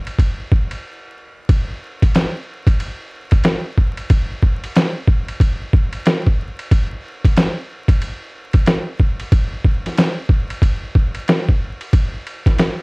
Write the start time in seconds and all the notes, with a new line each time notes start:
0.07 ride
0.18 kick, ride
0.52 kick
0.71 ride
1.49 kick, ride
2.02 kick, ride
2.15 snare, hi-hat pedal, ride
2.67 kick, ride
2.80 ride
3.31 kick, ride
3.44 snare, hi-hat pedal, ride
3.78 kick
3.97 ride
4.10 kick, ride
4.42 kick
4.64 ride
4.75 snare, hi-hat pedal, ride
5.08 kick
5.28 ride
5.40 kick, ride
5.73 kick
5.93 ride
6.06 snare, hi-hat pedal, ride
6.26 kick
6.59 ride
6.71 kick, ride
7.24 kick, ride
7.36 snare, hi-hat pedal, ride
7.88 kick, ride
8.02 ride
8.53 kick, ride
8.66 snare, hi-hat pedal, ride
8.99 kick
9.19 ride
9.32 kick, ride
9.64 kick
9.86 snare, ride
9.97 snare, hi-hat pedal, ride
10.29 kick
10.50 ride
10.62 kick, ride
10.95 kick
11.14 ride
11.28 snare, hi-hat pedal, ride
11.48 kick
11.81 ride
11.93 kick, ride
12.27 ride
12.46 kick, snare, ride
12.59 snare, hi-hat pedal, ride